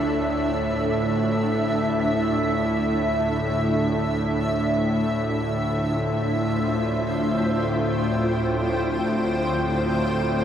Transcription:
0.00 1.23 A1 soft
0.00 10.44 D2 medium
0.00 10.44 A2 medium
0.00 7.23 D4 medium
0.00 10.44 F4 soft
0.00 6.13 A4 medium
0.00 6.81 E5 medium
4.86 10.44 F4 medium
5.66 10.44 C5 medium
6.84 10.44 G5 medium

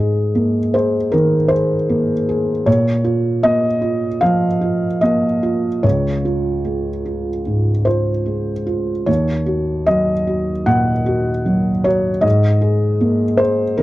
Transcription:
0.00 1.09 G#2 soft
0.00 0.59 G#4 soft
0.00 0.74 D#5 medium
0.35 0.97 A#3 soft
0.74 1.36 G#4 soft
0.74 1.13 C5 medium
1.12 1.74 D#3 soft
1.12 1.50 A#4 medium
1.48 2.11 G#4 soft
1.48 2.66 C5 medium
1.89 2.51 A#3 soft
2.29 2.67 G#4 soft
2.66 4.19 A#2 medium
2.66 3.44 C#5 medium
3.04 3.67 F4 soft
3.43 4.07 A#3 medium
3.43 4.22 D#5 medium
3.82 4.46 F4 soft
4.21 4.86 F3 soft
4.21 5.01 F5 medium
4.61 5.26 F4 soft
5.01 5.67 A#3 soft
5.01 5.83 D#5 medium
5.43 5.84 F4 soft
5.83 7.42 C#2 soft
5.83 7.86 C#5 medium
6.25 6.90 F4 soft
6.65 7.29 G#3 soft
7.06 7.70 F4 soft
7.47 8.11 G#2 soft
7.85 8.52 F4 soft
7.85 9.08 C5 medium
8.26 8.92 G#3 soft
8.67 9.08 F4 soft
9.06 10.63 D#2 soft
9.06 9.87 C#5 medium
9.46 10.11 F#4 soft
9.86 10.52 F#3 soft
9.86 10.67 D#5 medium
10.27 10.91 F#4 soft
10.66 11.30 A#2 soft
10.66 11.85 F#5 medium
11.06 11.70 F#4 soft
11.46 12.09 F#3 soft
11.84 12.24 F#4 soft
11.84 12.24 C#5 medium
12.21 13.75 G#2 medium
12.21 13.39 D#5 medium
12.61 13.24 G#4 soft
13.01 13.63 A#3 medium
13.37 13.83 G#4 medium
13.37 13.78 C5 medium
13.77 13.83 D#3 soft
13.77 13.83 A#4 medium

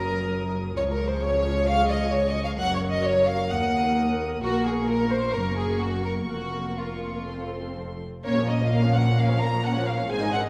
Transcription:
0.00 0.73 F#1 medium
0.00 0.73 F#2 medium
0.00 0.73 F#3 medium
0.00 0.52 A#4 medium
0.00 0.73 A#4 medium
0.00 0.73 D#6 medium
0.76 2.56 C#2 medium
0.76 2.55 F3 medium
0.76 2.55 G#4 medium
0.76 0.83 C#5 medium
0.76 3.48 C#6 medium
0.93 1.07 A#4 medium
1.08 1.23 C5 medium
1.21 1.67 C#5 medium
1.67 1.90 F5 loud
1.90 2.13 D#5 medium
2.12 2.28 C#5 medium
2.29 2.44 D#5 medium
2.44 2.50 F5 medium
2.59 3.50 F#1 medium
2.59 3.50 F#2 medium
2.59 3.48 F#3 medium
2.59 6.27 A#4 medium
2.59 2.74 F#5 loud
2.75 2.81 C#5 medium
2.91 3.05 D#5 medium
3.05 3.28 C#5 medium
3.27 3.51 F5 loud
3.51 4.44 D#2 medium
3.51 7.24 A#3 medium
3.51 4.20 F#5 medium
3.51 4.40 D#6 medium
4.43 5.34 A#1 medium
4.43 5.34 A#2 medium
4.43 4.65 F#4 loud
4.43 7.24 C#6 medium
4.66 4.89 G#4 medium
4.88 5.12 A#4 medium
5.11 5.35 C5 medium
5.34 6.31 F#1 medium
5.34 6.31 F#2 medium
5.34 5.58 A#4 medium
5.58 5.82 G#4 medium
5.81 6.06 F#4 medium
6.05 6.13 A#4 medium
6.28 8.01 F1 medium
6.28 8.01 F2 medium
6.28 6.77 F#4 medium
6.28 7.24 A#4 soft
6.78 7.76 F4 medium
7.27 8.00 C4 soft
7.27 8.00 A4 soft
7.27 8.00 C6 soft
8.24 10.06 A#1 medium
8.24 10.06 A#2 medium
8.24 8.35 A#3 medium
8.24 8.36 C#4 medium
8.24 8.35 A#4 medium
8.24 8.47 C#5 loud
8.36 8.48 F3 medium
8.36 8.47 A#3 medium
8.36 8.48 C#4 medium
8.36 8.48 C#5 medium
8.47 8.59 A#3 medium
8.47 8.58 A#3 medium
8.47 8.60 C#4 medium
8.47 8.59 A#4 medium
8.47 8.72 D#5 medium
8.59 8.71 F3 medium
8.59 8.70 A#3 medium
8.59 8.71 C#4 medium
8.59 8.71 C#5 medium
8.70 8.82 A#3 medium
8.70 8.82 C#4 medium
8.70 8.82 A#4 medium
8.70 8.95 F5 loud
8.82 8.95 F3 medium
8.82 8.93 A#3 medium
8.82 8.94 C#4 medium
8.82 8.95 C#5 soft
8.94 9.06 A#3 medium
8.94 9.07 A#3 medium
8.94 9.06 C#4 medium
8.94 9.07 A#4 medium
8.94 9.18 F#5 medium
9.06 9.18 F3 medium
9.06 9.17 A#3 medium
9.06 9.18 C#4 medium
9.06 9.18 C#5 medium
9.18 9.28 A#3 medium
9.18 9.29 A#3 medium
9.18 9.29 C#4 medium
9.18 9.29 A#4 medium
9.18 9.41 F5 loud
9.29 9.41 F3 medium
9.29 9.40 A#3 medium
9.29 9.41 C#4 medium
9.29 9.41 C#5 medium
9.40 9.52 A#3 medium
9.40 9.53 C#4 medium
9.40 9.52 A#4 medium
9.40 9.64 A#5 loud
9.52 9.64 F3 medium
9.52 9.63 A#3 medium
9.52 9.64 C#4 medium
9.52 9.64 C#5 medium
9.63 9.74 A#3 medium
9.63 9.75 A#3 medium
9.63 9.75 C#4 medium
9.63 9.74 A#4 medium
9.63 9.87 F#5 loud
9.73 9.87 F3 medium
9.73 9.86 A#3 medium
9.73 9.86 C#4 medium
9.73 9.86 C#5 medium
9.85 9.97 A#3 medium
9.85 9.98 A#3 medium
9.85 9.99 C#4 medium
9.85 9.98 A#4 medium
9.85 10.10 F5 medium
9.97 10.10 F3 medium
9.97 10.10 A#3 medium
9.97 10.09 C#4 medium
9.97 10.09 C#5 medium
10.09 10.49 G#1 medium
10.09 10.49 G#2 medium
10.09 10.21 D#3 medium
10.09 10.21 C4 medium
10.09 10.20 G#4 medium
10.09 10.20 C5 medium
10.09 10.32 G#5 loud
10.20 10.33 G#3 medium
10.20 10.32 D#4 medium
10.20 10.33 D#4 medium
10.20 10.32 D#5 medium
10.31 10.44 D#3 medium
10.31 10.44 C4 medium
10.31 10.43 G#4 medium
10.31 10.43 C5 medium
10.31 10.41 F#5 loud
10.42 10.49 G#3 medium
10.42 10.49 D#4 medium
10.42 10.49 D#5 medium

